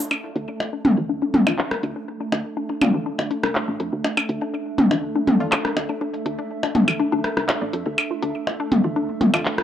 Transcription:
0.11 synth drone A3, ambient pad D4, synth arpeggio sound D4, percussion blips
0.27 ambient pad A4
0.36 fm bass D2, synth arpeggio sound D4, open hi-hat
0.48 synth arpeggio sound D4
0.60 percussion blips
0.73 synth arpeggio sound D4
0.80 ambient pad E5
0.85 fm bass D2, synth arpeggio sound D4, mid tom, open hi-hat
0.98 fm bass D2
1.09 synth arpeggio sound D4
1.22 fm bass D1, synth arpeggio sound D4
1.34 fm bass F2, mid tom, open hi-hat
1.47 synth stab A3 D4 F4, synth arpeggio sound D4, percussion blips
1.59 synth arpeggio sound D4, clap
1.71 cross-stick
1.83 fm bass D2, synth arpeggio sound D4, open hi-hat
1.96 synth arpeggio sound D4
2.21 synth arpeggio sound D4
2.32 fm bass D2, synth arpeggio sound D4, open hi-hat, percussion blips
2.57 synth arpeggio sound D4
2.70 synth arpeggio sound D4
2.81 fm bass D2, synth stab A3 D4 F4, mid tom, open hi-hat, percussion blips
2.94 fm bass D2, synth arpeggio sound D4
3.06 synth arpeggio sound D4
3.19 fm bass D2, percussion blips
3.31 synth arpeggio sound D4, open hi-hat
3.43 fm bass C2, synth arpeggio sound D4, cross-stick
3.55 clap
3.68 fm bass A1, synth arpeggio sound D4
3.80 fm bass F2, synth arpeggio sound D4, open hi-hat
3.93 fm bass D2
4.04 synth arpeggio sound D4, percussion blips
4.17 synth arpeggio sound D4, percussion blips
4.29 fm bass D2, open hi-hat
4.42 synth arpeggio sound D4
4.54 synth arpeggio sound D4
4.78 fm bass D2, synth arpeggio sound D4, mid tom, open hi-hat
4.91 fm bass D2, synth arpeggio sound D4, percussion blips
5.16 fm bass D1, synth arpeggio sound D4
5.27 fm bass F2, synth arpeggio sound D4, mid tom, open hi-hat
5.40 synth stab A3 D4 F4
5.52 synth arpeggio sound D4, clap, percussion blips
5.65 synth arpeggio sound D4, cross-stick
5.77 fm bass D2, open hi-hat, percussion blips
5.89 synth arpeggio sound D4
6.01 synth arpeggio sound D4
6.14 open hi-hat
6.26 fm bass D2, synth arpeggio sound D4, open hi-hat
6.39 synth arpeggio sound D4
6.63 synth arpeggio sound D4, percussion blips
6.75 fm bass D2, synth arpeggio sound D4, mid tom, open hi-hat
6.88 fm bass D2, open hi-hat, percussion blips
7.00 synth arpeggio sound D4
7.12 fm bass D2, synth arpeggio sound D4
7.24 cross-stick, open hi-hat
7.37 fm bass C2, synth arpeggio sound D4, cross-stick
7.49 synth arpeggio sound D5, clap, percussion blips
7.62 fm bass A1, synth arpeggio sound D5
7.73 fm bass F2, synth arpeggio sound A4, open hi-hat
7.86 fm bass D2, synth arpeggio sound A4
7.98 percussion blips
8.11 synth arpeggio sound F4
8.22 fm bass D2, synth arpeggio sound D4, open hi-hat
8.47 synth arpeggio sound F4, percussion blips
8.60 synth arpeggio sound D4
8.72 fm bass D2, mid tom, open hi-hat
8.84 fm bass D2, synth arpeggio sound F4
8.96 synth arpeggio sound D4
9.09 fm bass D1
9.21 fm bass F2, synth arpeggio sound F4, mid tom, open hi-hat
9.34 synth stab A3 D4 F4, synth arpeggio sound D4, percussion blips
9.45 clap
9.58 synth arpeggio sound F4, cross-stick

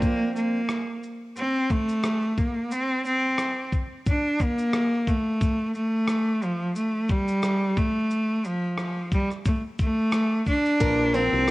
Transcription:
Already playing: twelve-string acoustic guitar F3 C4, steel-string acoustic guitar F3 C4
0.01 cello A#3, kick, shaker
0.35 cello A#3, shaker
0.69 cross-stick, shaker
1.03 shaker
1.36 cello C4, shaker
1.70 cello A3, kick, shaker
1.89 shaker
2.03 cross-stick, shaker
2.37 cello A#3, kick, shaker
2.71 cello C4, shaker
3.05 cello C4, shaker
3.38 cross-stick, shaker
3.72 kick, shaker
4.06 cello D4, kick, shaker
4.39 cello A#3, kick, shaker
4.58 shaker
4.73 cross-stick, shaker
5.07 cello A3, kick, shaker
5.41 kick, shaker
5.75 cello A3, shaker
6.08 cross-stick, shaker
6.42 cello F3, shaker
6.76 cello A3, shaker
7.09 cello G3, kick, shaker
7.28 shaker
7.43 cross-stick, shaker
7.77 cello A3, kick, shaker
8.10 shaker
8.44 cello F3, shaker
8.77 cross-stick, shaker
9.12 cello G3, kick, shaker
9.30 cross-stick, shaker
9.45 cello A3, kick, shaker
9.79 cello A3, kick, shaker
10.12 cross-stick, shaker
10.46 cello D4, kick, shaker
10.66 shaker
10.80 fretless electric bass A#1, steel-string acoustic guitar F3, twelve-string acoustic guitar A#3, kick, shaker
11.14 steel-string acoustic guitar A#3, twelve-string acoustic guitar C4, cello C4, shaker
11.33 fretless electric bass C2
11.48 cross-stick

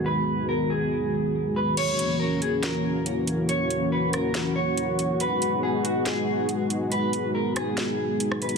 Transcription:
Already playing: analog synth pad D#3 G#3 B3 F#4
0.06 clean electric guitar B4
0.49 clean electric guitar A#4
0.70 clean electric guitar G#4
1.56 clean electric guitar B4
1.77 analog synth pad E3 A#3 C#4 F#4, clean electric guitar C#5, closed hi-hat, crash
1.99 closed hi-hat
2.20 clean electric guitar A#4
2.42 clean electric guitar G#4, closed hi-hat
2.63 clean electric guitar A#4, snare, closed hi-hat
3.06 closed hi-hat
3.27 closed hi-hat
3.49 clean electric guitar C#5, closed hi-hat
3.70 closed hi-hat
3.92 clean electric guitar B4
4.13 clean electric guitar A#4, cross-stick, closed hi-hat
4.34 snare, closed hi-hat
4.56 clean electric guitar C#5
4.77 closed hi-hat
4.99 closed hi-hat
5.20 analog synth pad G#3 B3 D#4, clean electric guitar B4, closed hi-hat
5.42 closed hi-hat
5.63 clean electric guitar G#4
5.85 clean electric guitar F#4, closed hi-hat
6.06 clean electric guitar G#4, snare, closed hi-hat
6.49 closed hi-hat
6.70 closed hi-hat
6.92 clean electric guitar B4, closed hi-hat
7.13 closed hi-hat
7.35 clean electric guitar A#4
7.56 clean electric guitar G#4, cross-stick, closed hi-hat
7.77 snare, closed hi-hat
8.20 closed hi-hat
8.32 cross-stick
8.42 clean electric guitar B4, closed hi-hat
8.49 closed hi-hat

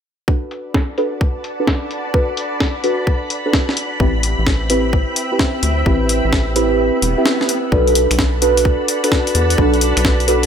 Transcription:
0.28 synth stab D4 F#4 A4 B4, string machine D5 F#5 A5 B5, kick
0.51 closed hi-hat
0.74 kick, snare
0.98 synth stab D4 F#4 A4 B4, closed hi-hat
1.21 kick
1.44 closed hi-hat
1.60 synth stab D4 F#4 A4 B4
1.67 kick, snare
1.91 closed hi-hat
2.14 synth stab D4 F#4 A4 B4, kick
2.37 closed hi-hat
2.60 kick, snare
2.84 synth stab D4 F#4 A4 B4, closed hi-hat
3.07 kick
3.30 closed hi-hat
3.46 synth stab D4 F#4 A4 B4
3.53 kick, snare
3.69 snare
3.77 closed hi-hat
4.00 analog synth bass A1, string machine C4 E5 G5, synth stab C4 E4 G4 B4, kick
4.23 closed hi-hat
4.39 analog synth bass A1
4.47 kick, snare
4.70 synth stab C4 E4 G4 B4, closed hi-hat
4.93 kick
5.16 closed hi-hat
5.32 synth stab C4 E4 G4 B4
5.39 kick, snare
5.63 analog synth bass D2, closed hi-hat
5.86 analog synth bass A1, synth stab C4 E4 G4 B4, kick
6.09 closed hi-hat
6.25 analog synth bass A1
6.33 kick, snare
6.56 synth stab C4 E4 G4 B4, closed hi-hat
6.79 swell
7.02 analog synth bass E1, closed hi-hat
7.18 synth stab C4 E4 G4 B4
7.26 snare
7.41 snare
7.49 closed hi-hat
7.72 analog synth bass B1, synth stab D4 F#4 A4 B4, string machine D5 F#5 A5 B5, kick
7.88 closed hi-hat
7.93 ambient pad D5, closed hi-hat
8.11 analog synth bass B1, finger snap, closed hi-hat
8.19 kick, snare
8.38 synth stab D4 F#4 A4 B4, ambient pad B4, closed hi-hat
8.57 closed hi-hat
8.65 kick
8.88 closed hi-hat
9.04 synth stab D4 F#4 A4 B4, finger snap, closed hi-hat
9.12 kick, snare
9.27 closed hi-hat
9.35 analog synth bass E2, closed hi-hat
9.50 closed hi-hat
9.58 analog synth bass B1, synth stab D4 F#4 A4 B4, kick
9.74 closed hi-hat
9.81 closed hi-hat
9.97 analog synth bass B1, finger snap, closed hi-hat
10.05 kick, snare
10.20 closed hi-hat
10.28 synth stab D4 F#4 A4 B4, closed hi-hat

